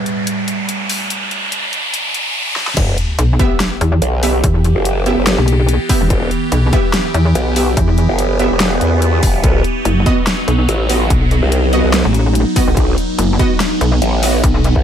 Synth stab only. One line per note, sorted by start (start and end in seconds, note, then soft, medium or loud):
3.40 3.52 B3 medium
3.40 3.52 G4 medium
3.40 3.52 E5 loud
4.23 4.36 B3 medium
4.23 4.36 G4 medium
4.23 4.36 E5 medium
5.06 5.19 B3 medium
5.06 5.19 G4 medium
5.06 5.19 E5 loud
5.90 6.02 B3 medium
5.90 6.02 G4 medium
5.90 6.02 E5 medium
6.73 6.86 B3 loud
6.73 6.86 G4 medium
6.73 6.86 E5 loud
7.56 7.69 B3 medium
7.56 7.69 G4 medium
7.56 7.69 E5 medium
8.40 8.52 B3 medium
8.40 8.52 G4 medium
8.40 8.52 E5 loud
10.06 10.19 B3 medium
10.06 10.19 F#4 medium
10.06 10.19 D#5 loud
10.90 11.02 B3 medium
10.90 11.02 F#4 medium
10.90 11.02 D#5 medium
11.73 11.85 B3 medium
11.73 11.85 F#4 medium
11.73 11.86 D#5 loud
12.56 12.69 B3 medium
12.56 12.69 F#4 medium
12.56 12.69 D#5 medium
13.39 13.52 B3 loud
13.39 13.52 F#4 medium
13.39 13.52 D#5 loud
14.23 14.35 B3 medium
14.23 14.35 F#4 medium
14.23 14.35 D#5 medium